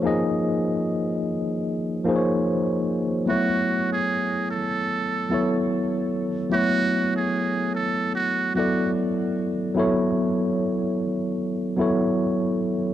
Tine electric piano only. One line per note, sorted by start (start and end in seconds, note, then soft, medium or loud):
0.00 0.02 F3 medium
0.00 1.28 F3 medium
0.00 0.03 A#3 medium
0.00 1.29 A#3 medium
0.00 0.04 D#4 medium
0.00 0.06 G#4 medium
0.00 2.09 C5 medium
0.00 2.16 C#5 medium
0.04 1.30 D#4 medium
0.04 1.30 G#4 medium
0.04 1.31 D#5 loud
2.04 3.01 F3 medium
2.04 3.02 A#3 medium
2.04 3.02 D#4 medium
2.04 3.03 G#4 medium
2.09 2.15 C5 medium
2.16 3.07 C#5 medium
3.26 4.53 F#3 medium
3.26 4.54 A3 medium
3.26 4.53 B3 medium
3.26 4.54 E4 medium
3.31 4.55 C#5 medium
5.29 6.25 F#3 medium
5.29 6.26 B3 medium
5.29 6.27 E4 medium
5.29 6.27 A4 medium
5.34 6.28 C#5 medium
6.49 7.77 F#3 medium
6.49 7.79 A3 medium
6.49 7.77 B3 medium
6.49 7.78 E4 medium
6.55 7.79 C#5 medium
8.55 9.50 F#3 medium
8.55 9.51 B3 medium
8.55 9.52 E4 medium
8.55 9.52 A4 medium
8.60 9.53 D5 medium
9.75 11.01 F#3 medium
9.75 11.02 B3 medium
9.75 11.03 E4 medium
9.75 11.03 A4 medium
9.80 11.04 C#5 loud
11.76 12.73 F#3 medium
11.76 12.74 B3 medium
11.76 12.75 E4 medium
11.76 12.75 A4 medium
11.81 12.76 C#5 medium